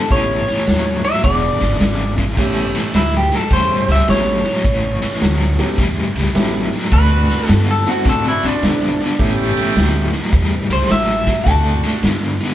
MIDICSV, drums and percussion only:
0, 0, Header, 1, 2, 480
1, 0, Start_track
1, 0, Tempo, 567644
1, 90, Time_signature, 4, 2, 24, 8
1, 10606, End_track
2, 0, Start_track
2, 0, Title_t, "Drums"
2, 87, Note_on_c, 9, 51, 76
2, 89, Note_on_c, 9, 36, 101
2, 95, Note_on_c, 9, 38, 31
2, 172, Note_off_c, 9, 51, 0
2, 174, Note_off_c, 9, 36, 0
2, 180, Note_off_c, 9, 38, 0
2, 405, Note_on_c, 9, 51, 60
2, 412, Note_on_c, 9, 38, 33
2, 489, Note_off_c, 9, 51, 0
2, 497, Note_off_c, 9, 38, 0
2, 564, Note_on_c, 9, 51, 73
2, 572, Note_on_c, 9, 38, 102
2, 649, Note_off_c, 9, 51, 0
2, 656, Note_off_c, 9, 38, 0
2, 885, Note_on_c, 9, 51, 61
2, 892, Note_on_c, 9, 38, 33
2, 969, Note_off_c, 9, 51, 0
2, 977, Note_off_c, 9, 38, 0
2, 1045, Note_on_c, 9, 51, 91
2, 1048, Note_on_c, 9, 36, 107
2, 1053, Note_on_c, 9, 38, 34
2, 1130, Note_off_c, 9, 51, 0
2, 1132, Note_off_c, 9, 36, 0
2, 1137, Note_off_c, 9, 38, 0
2, 1362, Note_on_c, 9, 51, 70
2, 1370, Note_on_c, 9, 38, 33
2, 1447, Note_off_c, 9, 51, 0
2, 1455, Note_off_c, 9, 38, 0
2, 1524, Note_on_c, 9, 51, 76
2, 1531, Note_on_c, 9, 38, 102
2, 1608, Note_off_c, 9, 51, 0
2, 1616, Note_off_c, 9, 38, 0
2, 1841, Note_on_c, 9, 51, 58
2, 1844, Note_on_c, 9, 36, 75
2, 1849, Note_on_c, 9, 38, 36
2, 1926, Note_off_c, 9, 51, 0
2, 1928, Note_off_c, 9, 36, 0
2, 1933, Note_off_c, 9, 38, 0
2, 2006, Note_on_c, 9, 36, 99
2, 2006, Note_on_c, 9, 49, 97
2, 2014, Note_on_c, 9, 38, 32
2, 2090, Note_off_c, 9, 49, 0
2, 2091, Note_off_c, 9, 36, 0
2, 2098, Note_off_c, 9, 38, 0
2, 2324, Note_on_c, 9, 51, 65
2, 2331, Note_on_c, 9, 38, 35
2, 2408, Note_off_c, 9, 51, 0
2, 2416, Note_off_c, 9, 38, 0
2, 2485, Note_on_c, 9, 51, 84
2, 2493, Note_on_c, 9, 38, 109
2, 2570, Note_off_c, 9, 51, 0
2, 2577, Note_off_c, 9, 38, 0
2, 2806, Note_on_c, 9, 51, 53
2, 2814, Note_on_c, 9, 38, 31
2, 2891, Note_off_c, 9, 51, 0
2, 2898, Note_off_c, 9, 38, 0
2, 2963, Note_on_c, 9, 51, 81
2, 2967, Note_on_c, 9, 36, 107
2, 3048, Note_off_c, 9, 51, 0
2, 3051, Note_off_c, 9, 36, 0
2, 3284, Note_on_c, 9, 51, 58
2, 3292, Note_on_c, 9, 38, 34
2, 3369, Note_off_c, 9, 51, 0
2, 3377, Note_off_c, 9, 38, 0
2, 3448, Note_on_c, 9, 51, 71
2, 3455, Note_on_c, 9, 38, 94
2, 3532, Note_off_c, 9, 51, 0
2, 3540, Note_off_c, 9, 38, 0
2, 3765, Note_on_c, 9, 51, 64
2, 3773, Note_on_c, 9, 38, 34
2, 3850, Note_off_c, 9, 51, 0
2, 3857, Note_off_c, 9, 38, 0
2, 3928, Note_on_c, 9, 36, 106
2, 3928, Note_on_c, 9, 51, 76
2, 4012, Note_off_c, 9, 36, 0
2, 4012, Note_off_c, 9, 51, 0
2, 4247, Note_on_c, 9, 51, 59
2, 4255, Note_on_c, 9, 38, 35
2, 4332, Note_off_c, 9, 51, 0
2, 4339, Note_off_c, 9, 38, 0
2, 4406, Note_on_c, 9, 51, 85
2, 4414, Note_on_c, 9, 38, 108
2, 4491, Note_off_c, 9, 51, 0
2, 4498, Note_off_c, 9, 38, 0
2, 4725, Note_on_c, 9, 51, 57
2, 4733, Note_on_c, 9, 38, 33
2, 4810, Note_off_c, 9, 51, 0
2, 4817, Note_off_c, 9, 38, 0
2, 4887, Note_on_c, 9, 51, 86
2, 4888, Note_on_c, 9, 36, 110
2, 4972, Note_off_c, 9, 51, 0
2, 4973, Note_off_c, 9, 36, 0
2, 5206, Note_on_c, 9, 51, 65
2, 5213, Note_on_c, 9, 38, 34
2, 5290, Note_off_c, 9, 51, 0
2, 5298, Note_off_c, 9, 38, 0
2, 5369, Note_on_c, 9, 51, 83
2, 5376, Note_on_c, 9, 38, 102
2, 5453, Note_off_c, 9, 51, 0
2, 5461, Note_off_c, 9, 38, 0
2, 5688, Note_on_c, 9, 51, 66
2, 5696, Note_on_c, 9, 38, 35
2, 5773, Note_off_c, 9, 51, 0
2, 5781, Note_off_c, 9, 38, 0
2, 5848, Note_on_c, 9, 51, 82
2, 5850, Note_on_c, 9, 36, 110
2, 5933, Note_off_c, 9, 51, 0
2, 5935, Note_off_c, 9, 36, 0
2, 6169, Note_on_c, 9, 51, 69
2, 6177, Note_on_c, 9, 38, 35
2, 6253, Note_off_c, 9, 51, 0
2, 6261, Note_off_c, 9, 38, 0
2, 6327, Note_on_c, 9, 51, 78
2, 6335, Note_on_c, 9, 38, 109
2, 6412, Note_off_c, 9, 51, 0
2, 6419, Note_off_c, 9, 38, 0
2, 6647, Note_on_c, 9, 51, 59
2, 6654, Note_on_c, 9, 38, 35
2, 6731, Note_off_c, 9, 51, 0
2, 6739, Note_off_c, 9, 38, 0
2, 6808, Note_on_c, 9, 51, 84
2, 6812, Note_on_c, 9, 36, 115
2, 6893, Note_off_c, 9, 51, 0
2, 6896, Note_off_c, 9, 36, 0
2, 7126, Note_on_c, 9, 51, 62
2, 7134, Note_on_c, 9, 38, 35
2, 7211, Note_off_c, 9, 51, 0
2, 7219, Note_off_c, 9, 38, 0
2, 7293, Note_on_c, 9, 51, 76
2, 7300, Note_on_c, 9, 38, 101
2, 7377, Note_off_c, 9, 51, 0
2, 7385, Note_off_c, 9, 38, 0
2, 7614, Note_on_c, 9, 51, 57
2, 7621, Note_on_c, 9, 38, 36
2, 7698, Note_off_c, 9, 51, 0
2, 7706, Note_off_c, 9, 38, 0
2, 7774, Note_on_c, 9, 51, 73
2, 7775, Note_on_c, 9, 36, 102
2, 7859, Note_off_c, 9, 36, 0
2, 7859, Note_off_c, 9, 51, 0
2, 8092, Note_on_c, 9, 51, 62
2, 8099, Note_on_c, 9, 38, 38
2, 8176, Note_off_c, 9, 51, 0
2, 8184, Note_off_c, 9, 38, 0
2, 8252, Note_on_c, 9, 51, 79
2, 8259, Note_on_c, 9, 38, 112
2, 8336, Note_off_c, 9, 51, 0
2, 8344, Note_off_c, 9, 38, 0
2, 8572, Note_on_c, 9, 51, 61
2, 8579, Note_on_c, 9, 38, 29
2, 8656, Note_off_c, 9, 51, 0
2, 8664, Note_off_c, 9, 38, 0
2, 8731, Note_on_c, 9, 51, 90
2, 8733, Note_on_c, 9, 36, 117
2, 8739, Note_on_c, 9, 38, 31
2, 8815, Note_off_c, 9, 51, 0
2, 8818, Note_off_c, 9, 36, 0
2, 8823, Note_off_c, 9, 38, 0
2, 9050, Note_on_c, 9, 51, 67
2, 9057, Note_on_c, 9, 38, 36
2, 9134, Note_off_c, 9, 51, 0
2, 9142, Note_off_c, 9, 38, 0
2, 9211, Note_on_c, 9, 51, 86
2, 9219, Note_on_c, 9, 38, 95
2, 9296, Note_off_c, 9, 51, 0
2, 9304, Note_off_c, 9, 38, 0
2, 9528, Note_on_c, 9, 51, 64
2, 9530, Note_on_c, 9, 36, 78
2, 9535, Note_on_c, 9, 38, 35
2, 9612, Note_off_c, 9, 51, 0
2, 9614, Note_off_c, 9, 36, 0
2, 9620, Note_off_c, 9, 38, 0
2, 9690, Note_on_c, 9, 51, 80
2, 9692, Note_on_c, 9, 36, 98
2, 9775, Note_off_c, 9, 51, 0
2, 9777, Note_off_c, 9, 36, 0
2, 10009, Note_on_c, 9, 51, 65
2, 10016, Note_on_c, 9, 38, 37
2, 10093, Note_off_c, 9, 51, 0
2, 10101, Note_off_c, 9, 38, 0
2, 10170, Note_on_c, 9, 51, 82
2, 10178, Note_on_c, 9, 38, 102
2, 10255, Note_off_c, 9, 51, 0
2, 10262, Note_off_c, 9, 38, 0
2, 10487, Note_on_c, 9, 51, 57
2, 10495, Note_on_c, 9, 38, 32
2, 10572, Note_off_c, 9, 51, 0
2, 10580, Note_off_c, 9, 38, 0
2, 10606, End_track
0, 0, End_of_file